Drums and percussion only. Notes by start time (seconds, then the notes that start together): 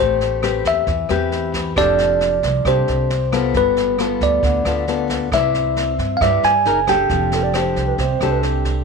0.21 snare
0.43 cross-stick, snare
0.65 kick, snare
0.87 kick, snare
1.09 cross-stick, snare
1.32 snare
1.54 kick, snare
1.76 kick, cross-stick, snare
1.98 snare
2.20 snare
2.43 kick, snare
2.65 kick, cross-stick, snare
2.88 snare
3.10 snare
3.32 kick, cross-stick, snare
3.54 kick, snare
3.77 snare
3.98 cross-stick, snare
4.21 kick, snare
4.43 kick, snare
4.65 cross-stick, snare
4.87 snare
5.09 kick, snare
5.32 kick, cross-stick, snare
5.54 snare
5.76 snare
5.99 kick, snare
6.21 kick, cross-stick, snare
6.43 snare
6.65 snare
6.87 kick, cross-stick, snare
7.09 kick, snare
7.32 snare
7.54 cross-stick, snare
7.76 kick, snare
7.98 kick, snare
8.21 cross-stick, snare
8.43 snare
8.65 kick, snare